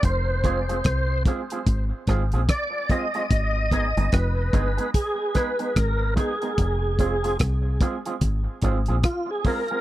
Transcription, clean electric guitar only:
X:1
M:4/4
L:1/16
Q:"Swing 16ths" 1/4=73
K:Fdor
V:1 name="Clean electric guitar"
z2 [A,CFA] [A,CFA] z2 [A,CFA] [A,CFA] z2 [A,CFA] [A,CFA] z2 [A,CFA] [A,CFA] | z2 [A,_CEA] [A,CEA] z2 [A,CEA] [A,CEA] z2 [A,CEA] [A,CEA] z2 [A,CEA] [A,CEA] | z2 [A,CFA] [A,CFA] z2 [A,CFA] [A,CFA] z2 [A,CFA] [A,CFA] z2 [A,CFA] [A,CFA] |]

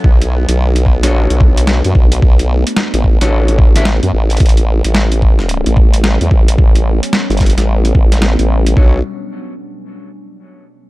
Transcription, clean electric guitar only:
X:1
M:4/4
L:1/16
Q:"Swing 16ths" 1/4=110
K:Bm
V:1 name="Clean electric guitar"
z6 z [DFAc]8- [DFAc]- | [DFAc]6- [DFAc] [DFAc]4 [DFAe] z4 | z16 | z16 |
[DFAc]2 z12 z2 |]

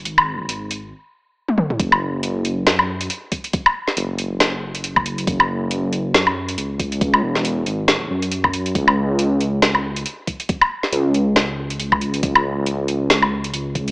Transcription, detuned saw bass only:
X:1
M:4/4
L:1/8
Q:"Swing 16ths" 1/4=138
K:C#phr
V:1 name="Detuned saw bass" clef=bass
G,,,2 G,,,2 z4 | F,,,4 F,,2 z2 | z2 F,,,6 | F,,,4 F,,2 C,,2- |
C,, E,,,2 G,,,2 F,,3 | C,,4 C,,2 z2 | z2 C,,6 | C,,4 C,,2 C,,2 |]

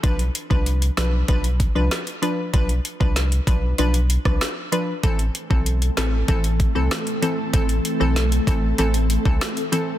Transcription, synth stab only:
X:1
M:4/4
L:1/16
Q:1/4=96
K:Am
V:1 name="Synth stab"
[F,DB] z2 [F,DB]3 [F,DB]2 [F,DB] z2 [F,DB]3 [F,DB]2 | [F,DB] z2 [F,DB]3 [F,DB]2 [F,DB] z2 [F,DB] z2 [F,DB] z | [E,CA] z2 [E,CA]3 [E,CA]2 [E,CA] z2 [E,CA]3 [E,CA]2 | [E,CA] z2 [E,CA]3 [E,CA]2 [E,CA] z2 [E,CA] z2 [E,CA] z |]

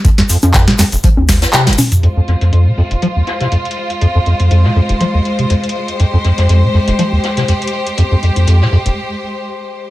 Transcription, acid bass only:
X:1
M:4/4
L:1/16
Q:"Swing 16ths" 1/4=121
K:Fm
V:1 name="Acid bass" clef=bass
F,, F,, F,, F,, F,, C, F,, F,,, F, E,,2 F,, C, F,,, z2 | F,, F,, F,, F,, F,, C, F,, F,,, F, E,, z C, F,, z3 | F,, F,, F,, F,, F,, C, F,, F,,, F, E,, z C, F,, z3 | F,, F,, F,, F,, F,, C, F,, F,,, F, E,, z C, F,, z3 |
F,, F,, F,, F,, F,, C, F,, F,,, z8 |]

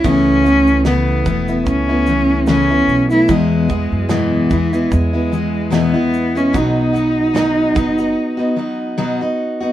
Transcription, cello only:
X:1
M:4/4
L:1/16
Q:"Swing 16ths" 1/4=74
K:E
V:1 name="Cello"
C4 B,4 C4 C3 E | G,4 E,4 G,4 B,3 C | D12 z4 |]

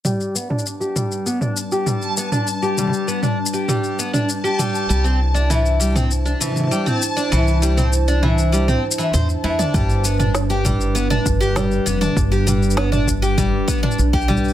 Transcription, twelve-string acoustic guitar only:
X:1
M:4/4
L:1/16
Q:1/4=99
K:G
V:1 name="Twelve-string acoustic guitar"
G,2 B, D z G G,2 B, D z G G,2 B, D | z G G,2 B, D z G G,2 B, D z G G,2 | G, C z D E,2 G, C z D E,2 G, C z D | E,2 G, C z D E,2 G, C z E, c z E, D |
G,2 B, D z G G,2 B, D z G G,2 B, D | z G G,2 B, D z G G,2 B, D z G G,2 |]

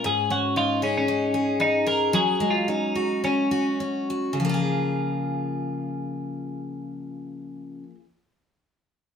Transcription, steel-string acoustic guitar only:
X:1
M:4/4
L:1/8
Q:"Swing 16ths" 1/4=100
K:Db
V:1 name="Steel-string acoustic guitar"
A,, D E A E A E A | G, A, D G D G D G | [D,F,B,FA]8- | [D,F,B,FA]8 |]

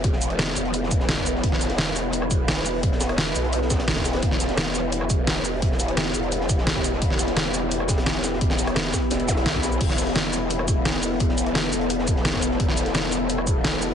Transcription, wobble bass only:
X:1
M:4/4
L:1/8
Q:1/4=172
K:Em
V:1 name="Wobble bass" clef=bass
E,,,3 E,,,4- E,,, | E,,,4- E,,, E,,,3 | E,,,3 B,,,3 E,,,2 | E,,,4- E,,, E,,,3 |
E,,,3 E,,,4- E,,, | E,,,4- E,,, E,,,3 | E,,,3 z E,,,2 B,,,2 | E,,,4- E,,, E,,,3 |
E,,,3 E,,,4- E,,, | E,,,4- E,,, E,,,3 |]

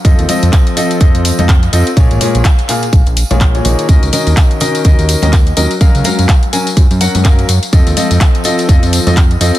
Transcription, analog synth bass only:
X:1
M:4/4
L:1/16
Q:"Swing 16ths" 1/4=125
K:Fphr
V:1 name="Analog synth bass" clef=bass
F,, E,, z F,, z4 F,, F,, z F,,3 F,, z | B,,, A,,, z B,,, z4 B,,, B,,, z B,,,3 B,,, z | E,, D,, z E,, z4 E,, E,, z E,,3 E,, z | G,, D,, z G,, z4 G,, G,, z G,,3 G,, z |
F,, E,, z F,, z4 F,, F,, z F,,3 F,, z |]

